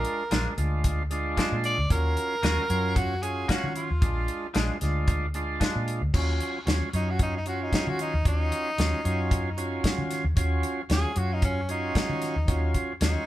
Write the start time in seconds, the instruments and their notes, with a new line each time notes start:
Already playing: tonewheel organ G#3 D4 F4, tenor saxophone A#4
0.05 closed hi-hat
0.31 fingered electric bass A#1, clean electric guitar F3 G#3 D4, tonewheel organ G#3 D4 F4, snare, closed hi-hat
0.57 fingered electric bass D2, tonewheel organ G#3 D4 F4, closed hi-hat
0.84 kick, closed hi-hat
1.10 tonewheel organ G#3 D4 F4, closed hi-hat
1.37 clean electric guitar F3 G#3 D4, muted fingered electric bass stroke, kick, snare, closed hi-hat
1.52 fingered electric bass A#2
1.64 tenor saxophone D5, closed hi-hat
1.78 fingered electric bass D2
1.90 fingered electric bass D#2, tonewheel organ F#3 C#4 F4, tenor saxophone A#4, kick, closed hi-hat
2.17 closed hi-hat
2.42 fingered electric bass D#2, tonewheel organ F#3 C#4 F4, clean electric guitar A#3 C#4 F#4, snare, closed hi-hat
2.69 fingered electric bass F#2, tonewheel organ F#3 C#4 F4, closed hi-hat
2.96 tenor saxophone F#4, kick, closed hi-hat
3.22 tonewheel organ F#3 C#4 F4, tenor saxophone G#4, closed hi-hat
3.48 clean electric guitar A#3 C#4 F#4, tenor saxophone F#4, muted fingered electric bass stroke, kick, snare, closed hi-hat
3.64 fingered electric bass D#3
3.76 tenor saxophone F4, closed hi-hat
3.91 fingered electric bass D#2
4.01 fingered electric bass A#1, tonewheel organ G#3 D4 F4, kick, closed hi-hat
4.28 closed hi-hat
4.54 fingered electric bass A#1, clean electric guitar F3 G#3 D4, tonewheel organ G#3 D4 F4, snare, closed hi-hat
4.81 fingered electric bass D2, tonewheel organ G#3 D4 F4, snare, closed hi-hat
5.08 kick, closed hi-hat
5.34 tonewheel organ G#3 D4 F4, closed hi-hat
5.60 clean electric guitar F3 G#3 D4, muted fingered electric bass stroke, kick, snare, closed hi-hat
5.76 fingered electric bass A#2
5.88 closed hi-hat
6.01 fingered electric bass D2
6.13 fingered electric bass D#2, tonewheel organ F#3 C#4 F4, kick, crash
6.40 closed hi-hat
6.66 fingered electric bass D#2, tonewheel organ F#3 C#4 F4, snare, closed hi-hat
6.93 fingered electric bass F#2, tonewheel organ F#3 C#4 F4, tenor saxophone D#4, closed hi-hat
7.10 tenor saxophone F#4
7.19 tenor saxophone D#4, kick, closed hi-hat
7.37 tenor saxophone D#4
7.46 tonewheel organ F#3 C#4 F4, tenor saxophone F#4, closed hi-hat
7.63 tenor saxophone D#4
7.72 tenor saxophone D#4, muted fingered electric bass stroke, kick, snare, closed hi-hat
7.87 fingered electric bass D#3, tenor saxophone F#4
7.99 tenor saxophone D#4, closed hi-hat
8.14 fingered electric bass D#2
8.25 fingered electric bass D#2, tonewheel organ F#3 C#4 F4, tenor saxophone D#4, kick, closed hi-hat
8.52 closed hi-hat
8.78 fingered electric bass D#2, tonewheel organ F#3 C#4 F4, snare, closed hi-hat
9.04 fingered electric bass F#2, tonewheel organ F#3 C#4 F4, closed hi-hat
9.31 kick, closed hi-hat
9.57 tonewheel organ F#3 C#4 F4, closed hi-hat
9.84 muted fingered electric bass stroke, kick, snare, closed hi-hat
9.98 fingered electric bass D#3
10.11 snare, closed hi-hat
10.24 fingered electric bass D#2
10.36 fingered electric bass D#2, tonewheel organ F#3 C#4 F4, kick, closed hi-hat
10.63 closed hi-hat
10.89 fingered electric bass D#2, tonewheel organ F#3 C#4 F4, tenor saxophone G#4, snare, closed hi-hat
11.15 fingered electric bass F#2, tonewheel organ F#3 C#4 F4, tenor saxophone F#4, closed hi-hat
11.33 tenor saxophone D#4
11.42 tenor saxophone C#4, kick, closed hi-hat
11.69 tonewheel organ F#3 C#4 F4, tenor saxophone D#4, closed hi-hat
11.95 muted fingered electric bass stroke, kick, snare, closed hi-hat
12.09 fingered electric bass D#3
12.22 snare, closed hi-hat
12.36 fingered electric bass D#2
12.47 fingered electric bass D#2, tonewheel organ F#3 C#4 F4, kick, closed hi-hat
12.74 kick, closed hi-hat
13.00 fingered electric bass D#2, tonewheel organ F#3 C#4 F4, tenor saxophone D#4, snare, closed hi-hat